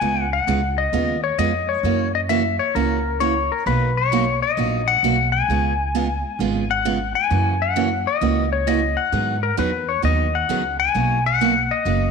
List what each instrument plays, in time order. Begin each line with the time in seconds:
Already playing: electric slide guitar G#5
0.01 upright bass C#2, steel-string acoustic guitar C#3 G#3 B3 F4 G#4
0.33 electric slide guitar F#5
0.47 upright bass C#2, steel-string acoustic guitar C#3 G#3 B3 F4 G#4
0.78 electric slide guitar D#5
0.92 upright bass D#2, steel-string acoustic guitar C#3 G#3 B3 F4 G#4
1.24 electric slide guitar C#5
1.38 upright bass F2, steel-string acoustic guitar C#3 G#3 B3 F4 G#4, electric slide guitar D#5
1.69 electric slide guitar C#5
1.83 upright bass F#2, steel-string acoustic guitar C#3 E3 A#3 C#4 F#4
2.15 electric slide guitar D#5
2.29 steel-string acoustic guitar C#3 E3 A#3 C#4 F#4, electric slide guitar E5
2.59 electric slide guitar C#5
2.75 upright bass C#2, steel-string acoustic guitar C#3 E3 A#3 C#4 F#4, electric slide guitar A#4
3.20 steel-string acoustic guitar C#3 E3 A#3 C#4 F#4, electric slide guitar C#5
3.52 electric slide guitar A#4
3.66 upright bass B1, steel-string acoustic guitar B2 F#3 A#3 D#4 F#4, electric slide guitar B4
3.97 electric slide guitar C#5
4.12 steel-string acoustic guitar B2 F#3 A#3 D#4 F#4
4.42 electric slide guitar D#5
4.57 upright bass A#1, steel-string acoustic guitar B2 F#3 A#3 D#4 F#4
4.88 electric slide guitar F#5
5.03 upright bass B1, steel-string acoustic guitar B2 F#3 A#3 D#4 F#4
5.32 electric slide guitar G#5
5.48 upright bass C#2, steel-string acoustic guitar C#3 G#3 B3 F4 G#4
5.95 steel-string acoustic guitar C#3 G#3 B3 F4 G#4
6.39 upright bass G#1, steel-string acoustic guitar C#3 G#3 B3 F4 G#4
6.71 electric slide guitar F#5
6.85 steel-string acoustic guitar C#3 G#3 B3 F4 G#4
7.15 electric slide guitar G#5
7.30 upright bass F#2, steel-string acoustic guitar C#3 E3 A#3 C#4 F#4
7.62 electric slide guitar F#5
7.76 steel-string acoustic guitar C#3 E3 A#3 C#4 F#4
8.07 electric slide guitar D#5
8.21 upright bass C#2, steel-string acoustic guitar C#3 E3 A#3 C#4 F#4
8.53 electric slide guitar C#5
8.67 steel-string acoustic guitar C#3 E3 A#3 C#4 F#4, electric slide guitar D#5
8.97 electric slide guitar F#5
9.12 upright bass G#2, steel-string acoustic guitar D#3 F#3 B3 D#4 G#4
9.43 electric slide guitar A#4
9.57 upright bass E2, steel-string acoustic guitar D#3 F#3 B3 D#4 G#4, electric slide guitar B4
9.89 electric slide guitar C#5
10.02 upright bass D#2, steel-string acoustic guitar D#3 F#3 B3 D#4 G#4, electric slide guitar D#5
10.35 electric slide guitar F#5
10.49 upright bass C#2, steel-string acoustic guitar D#3 F#3 B3 D#4 G#4
10.80 electric slide guitar G#5
10.94 upright bass B1, steel-string acoustic guitar B2 F#3 A#3 D#4 F#4
11.26 electric slide guitar F#5
11.41 steel-string acoustic guitar B2 F#3 A#3 D#4 F#4
11.71 electric slide guitar D#5
11.85 upright bass F#1, steel-string acoustic guitar B2 F#3 A#3 D#4 F#4